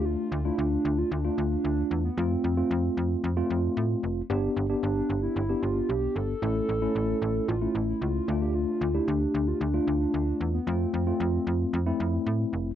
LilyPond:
<<
  \new Staff \with { instrumentName = "Soft synth lead" } { \time 4/4 \key d \dorian \tempo 4 = 113 f'8. e'16 d'8. f'16 d'8. d'4 b16 | c'2. r4 | r4 d'8. e'8. f'8 g'8 a'8~ | a'2 f'8 e'16 e'16 f'8. g'16 |
f'8. e'16 d'8. f'16 d'8. d'4 b16 | c'2. r4 | }
  \new Staff \with { instrumentName = "Tine electric piano" } { \time 4/4 \key d \dorian <a d' f'>8 r16 <a d' f'>4~ <a d' f'>16 r16 <a d' f'>4. r16 | <a c' f'>8. <a c' f'>4~ <a c' f'>16 r16 <a c' f'>4. r16 | <b d' g'>8. <b d' g'>4~ <b d' g'>16 r16 <b d' g'>4. r16 | <a cis' e'>8. <a cis' e'>4~ <a cis' e'>16 r16 <a cis' e'>4~ <a cis' e'>16 <a d' f'>8~ |
<a d' f'>8 r16 <a d' g'>4~ <a d' g'>16 r16 <a d' f'>4. r16 | <a c' f'>8. <a c' f'>4~ <a c' f'>16 r16 <a c' e'>4. r16 | }
  \new Staff \with { instrumentName = "FM bass" } { \clef bass \time 4/4 \key d \dorian d,8 d,8 d,8 d,8 d,8 d,8 d,8 e,8 | f,8 f,8 f,8 f,8 f,8 f,8 a,8 f,,8 | g,,8 g,,8 g,,8 g,,8 g,,8 g,,8 b,,8 g,,8 | a,,8 a,,8 a,,8 a,,8 a,,8 a,,8 cis,8 d,8~ |
d,8 d,8 d,8 d,8 d,8 d,8 d,8 e,8 | f,8 f,8 f,8 f,8 f,8 f,8 a,8 f,,8 | }
>>